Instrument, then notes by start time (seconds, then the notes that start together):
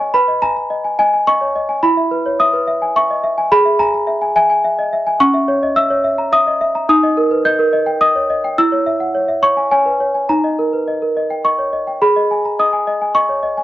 celesta
Already playing: G#4 C#5 D#5 A#5 B5 C#6 D#6
0.00 G#5
0.14 B4 B5
0.28 D#5
0.42 G#5 A#5
0.57 A#5
0.70 D#5
0.84 G#5
0.99 D#5 G#5
1.14 G#5
1.27 D#5 C#6
1.41 C#5
1.56 D#5
1.69 G#5
1.83 E4 B5
1.97 E5
2.11 B4
2.26 C#5
2.40 E5 D#6
2.53 B4
2.67 E5
2.82 G#5
2.96 E5 C#6
3.10 D#5
3.24 E5
3.38 G#5
3.52 G#4 B5
3.65 E5
3.79 G#5 A#5
3.94 A#5
4.07 E5
4.22 G#5
4.36 E5 G#5
4.50 G#5
4.64 E5
4.79 D#5
4.93 E5
5.07 G#5
5.20 C#4 C#6
5.34 E5
5.48 C#5
5.63 D#5
5.76 E5 E6
5.90 C#5
6.04 E5
6.18 A#5
6.32 E5 D#6
6.47 D#5
6.61 E5
6.75 A#5
6.89 D#4 D#6
7.03 D#5
7.17 A#4
7.31 B4
7.45 D#5 G6
7.59 A#4
7.73 D#5
7.86 G5
8.01 D#5 D#6
8.15 C#5
8.30 D#5
8.44 G5
8.58 E4 E6
8.72 C#5
8.86 E5
9.00 F#5
9.15 C#5
9.28 E5
9.43 C#5 C#6
9.57 G#5
9.71 C#5 G#5
9.86 B4
10.00 C#5
10.14 G#5
10.29 D#4 A#5
10.44 D#5
10.59 A#4
10.73 B4
10.88 D#5
11.02 A#4
11.17 D#5
11.30 G5
11.45 D#5 C#6
11.59 C#5
11.73 D#5
11.87 G5
12.02 G#4 B5
12.16 D#5
12.31 G#5
12.45 A#5
12.59 D#5 D#6
12.73 G#5
12.87 D#5
13.02 G#5
13.15 D#5 C#6
13.29 C#5
13.43 D#5
13.57 G#5